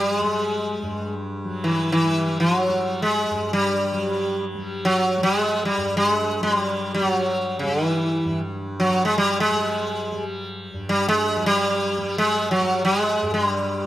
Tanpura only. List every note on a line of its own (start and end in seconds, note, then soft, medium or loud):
0.00 0.82 G2 soft
0.00 1.44 F#3 medium
0.00 0.20 G3 soft
0.20 2.06 G3 soft
0.82 3.30 G2 soft
1.44 3.91 F#3 medium
2.06 2.68 G3 soft
2.68 4.55 G3 soft
3.31 5.77 G2 medium
3.92 6.40 F#3 medium
4.55 5.18 G3 medium
5.18 7.01 G3 medium
5.77 8.25 G2 medium
6.40 8.88 F#3 medium
7.01 7.64 G3 medium
7.64 9.51 G3 medium
8.25 10.73 G2 medium
8.88 11.36 F#3 medium
9.51 10.12 G3 medium
10.12 11.98 G3 medium
10.74 13.22 G2 medium
11.36 13.84 F#3 medium
11.98 12.60 G3 medium
12.60 13.86 G3 medium
13.22 13.86 G2 medium